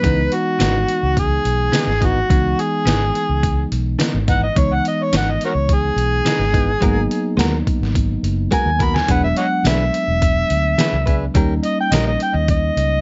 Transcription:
Already playing: B4
0.02 C#2 C#3 E3 G#3 B3 D#4, kick, closed hi-hat
0.32 F#4, closed hi-hat
0.59 G#1 C#3 E3 B3 D#4, snare, closed hi-hat, tambourine
0.89 closed hi-hat
1.03 C#2
1.17 G#4, kick, closed hi-hat
1.45 B1, closed hi-hat
1.72 C#3 E3 B3 D#4, snare, closed hi-hat, tambourine
1.87 G#1, snare
2.00 E3 B3 D#4, kick, closed hi-hat
2.05 F#4
2.29 C#2 E3 G#3 B3 D#4, kick, closed hi-hat
2.59 G#4, closed hi-hat
2.86 G#1 C#3 E3 B3 D#4, snare, closed hi-hat, tambourine
3.15 closed hi-hat
3.29 C#2
3.43 kick, closed hi-hat
3.72 B1, closed hi-hat
3.99 C#3 E3 B3 D#4, snare, closed hi-hat, tambourine
4.14 G#1
4.28 E3 B3 D#4 F#5, kick, closed hi-hat
4.43 D#5
4.55 C#2 E3 G#3 B3 D#4 C#5, kick, closed hi-hat
4.74 F#5
4.85 D#5, closed hi-hat
5.03 C#5
5.13 G#1 C#3 E3 B3 D#4, snare, closed hi-hat, tambourine
5.17 F#5
5.31 D#5
5.41 closed hi-hat
5.45 F#4 A#4 C#5
5.55 C#2
5.69 kick, closed hi-hat
5.74 G#4
5.96 B1, closed hi-hat
6.25 C#3 E3 B3 D#4, snare, closed hi-hat, tambourine
6.39 G#1, snare
6.53 E3 B3 D#4, kick, closed hi-hat
6.81 G#1 F#3 G#3 A#3 B3 D#4 F#4 A#4, kick, closed hi-hat
7.11 closed hi-hat
7.37 D#2 G#3 B3 F#4 A#4, snare, closed hi-hat, tambourine
7.67 kick, closed hi-hat
7.81 G#1, snare
7.95 kick, closed hi-hat
8.23 F#1, closed hi-hat
8.51 G#3 B3 F#4 A#4 G#5, kick, closed hi-hat
8.66 D#2
8.79 B3 F#4 A#4, kick, closed hi-hat
8.83 B5
8.96 G#5, snare
9.08 E1 E3 F#3 G#3 B3 D4 G#4 B4 F#5, kick, closed hi-hat
9.24 E5
9.37 C#5 D#5 F#5, closed hi-hat
9.65 B1 E3 D4 G#4 B4 E5, snare, closed hi-hat, tambourine
9.94 closed hi-hat
10.08 E1
10.22 kick, closed hi-hat
10.50 D2, closed hi-hat
10.78 E3 D4 G#4 B4, snare, closed hi-hat, tambourine
10.93 C#2
11.06 D4 G#4 B4, kick, closed hi-hat
11.34 D#2 D#3 G3 A#3 C#4 D#4 G4 A#4, kick, closed hi-hat
11.64 D#5, closed hi-hat
11.81 G5
11.92 A#1 D#3 C#4 G4 A#4 D#5, snare, closed hi-hat, tambourine
12.08 D#5
12.20 G5, closed hi-hat
12.34 D#2 D#5
12.48 D#5, kick, closed hi-hat
12.77 C#2, closed hi-hat

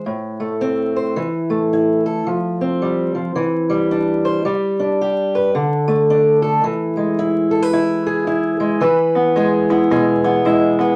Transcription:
0.06 A2
0.40 A3
0.61 C4
0.96 C5
1.16 E3
1.50 A3
1.73 E4
2.06 A4
2.27 F3
2.61 C4
2.82 G3
3.15 F3
3.36 E3
3.70 G3
3.91 D4
4.25 C5
4.45 G3
4.79 D4
5.01 G4
5.35 B4
5.55 D3
5.88 A3
6.10 D4
6.42 A4
6.64 E3
6.97 G#3
7.19 E4
7.51 A4
7.62 B4
7.73 E4
8.07 G#4
8.27 E4
8.60 G#3
8.81 E3 B4
9.15 B3
9.36 G#3 G#4
9.70 B3 E4
9.91 B2 G#3 G#4
10.24 B3 E4
10.45 G#3 E4
10.79 B3 B4

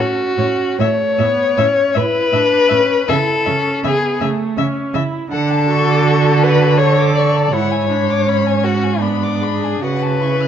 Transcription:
Already playing: C#4
0.00 F#4
0.38 A2 C#4 C#5
0.79 A2 A3 C#5 E5
1.18 A2 B3 E5
1.57 A2 C#4 E5
1.94 A2 E4 B4 E5
2.32 A2 D4 E5
2.68 A2 C#4 E5
3.08 C#3 E4 A4 E5
3.45 C#3 C#4 E5
3.84 C#3 B3 G#4 E5
4.20 C#3 A3 E5
4.57 C#3 C#4 E5
4.94 C#3 E4 E5
5.31 D3 D4 A4 F#5
5.50 A5
5.68 F#4 C#6
5.89 D6
6.07 C#6
6.26 A5
6.43 B4 F#5
6.61 A5
6.78 A4 C#5 C#6
6.98 D6
7.15 D5 C#6
7.36 A5
7.52 G#2 E4 C#5 F#5
7.71 G#5
7.89 D4 B5
8.10 D6
8.27 C#4 B5
8.47 G#5
8.64 F#4 F#5
8.83 G#5
9.01 B3 D4 B5
9.23 D6
9.41 G#4 B5
9.64 G#5
9.82 C#3 F#4 B4 F#5
10.03 A5
10.20 E4 C#6
10.41 F#6

